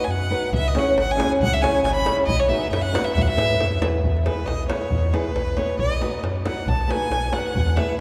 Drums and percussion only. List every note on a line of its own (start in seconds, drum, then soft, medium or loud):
0.53 davul low medium
0.75 davul high medium
0.98 davul high medium
1.20 davul high medium
1.33 davul high soft
1.43 davul low medium
1.64 davul high medium
1.85 davul high medium
2.06 davul high medium
2.18 davul high soft
2.29 davul low medium
2.73 davul high medium
2.95 davul high medium
3.07 davul high soft
3.18 davul low medium
3.29 davul high soft
3.38 davul high medium
3.60 davul high medium
3.72 davul high soft
3.82 davul high medium
4.04 davul low medium
4.17 davul high soft
4.26 davul high medium
4.39 davul high soft
4.48 davul high medium
4.70 davul high medium
4.81 davul high soft
4.91 davul low medium
5.03 davul high soft
5.14 davul high medium
5.25 davul high soft
5.36 davul high medium
5.57 davul high medium
5.69 davul high soft
5.79 davul low medium
5.91 davul high soft
6.02 davul high medium
6.13 davul high soft
6.24 davul high medium
6.46 davul high medium
6.58 davul high soft
6.68 davul low medium
6.81 davul high soft
6.91 davul high medium
7.02 davul high soft
7.12 davul high medium
7.24 davul high soft
7.33 davul high medium
7.46 davul high soft
7.56 davul low medium
7.67 davul high soft
7.77 davul high medium
7.88 davul high soft